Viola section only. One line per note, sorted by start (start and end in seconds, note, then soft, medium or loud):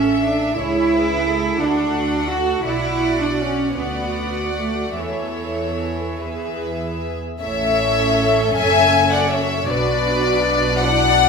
0.00 0.58 A4 medium
0.58 1.61 G#4 medium
1.60 2.63 F#4 medium
2.64 3.74 F#4 medium
3.78 4.95 F#4 medium
4.97 6.21 A4 medium
6.22 7.19 G#4 medium
7.41 9.65 C#4 medium
7.41 9.65 A4 medium
9.69 11.29 D4 medium
9.69 10.82 F#4 medium
10.82 11.29 E4 medium